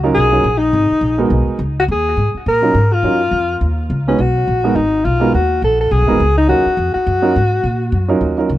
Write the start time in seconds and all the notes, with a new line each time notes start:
Already playing: C#2
0.03 F#3 C#4 D#4 F4 A#4
0.15 B1 G#4
0.32 F#3 C#4 D#4 F4 A#4
0.44 A#1
0.58 D#4
0.73 G#1
0.91 muted upright bass stroke
1.01 A#1
1.18 G#3 B3 D#4 F#4 A#4
1.30 B1
1.47 muted upright bass stroke
1.59 C#2
1.80 F#4
1.88 D#2 G#4
2.17 G#2
2.35 muted upright bass stroke
2.46 A#2 A#4
2.62 F#3 C#4 D#4 F4 A#4
2.74 G#2
2.93 F4
3.03 F#2 F#3 C#4 D#4 F4 A#4
3.31 F2
3.61 D#2
3.90 C#2
4.07 G#3 B3 C#4 D#4 F#4 B4
4.18 B1 F#4
4.48 A#1
4.64 G#3 B3 D#4 F#4 A#4
4.75 G#1 D#4
5.05 B1 F4
5.20 G#3 B3 D#4 F#4 A#4
5.34 D#2 F#4
5.62 A#1 A4
5.81 A4
5.91 B1 G#4
6.01 G#1
6.07 F#1 G#3 B3 D#4 F#4 A#4
6.20 C#2
6.38 D#4
6.48 D#2 F#3 C#4 D#4 F4 F#4 A#4
6.66 muted upright bass stroke
6.77 F2
6.94 F#4, muted upright bass stroke
7.07 F#2
7.22 F#3 C#4 D#4 F4 A#4
7.36 G#2
7.64 A#2
7.92 F#2
8.08 F#3 C#4 D#4 F4 A#4
8.21 D#2
8.37 F#3 C#4 D#4 F4 A#4
8.49 C#2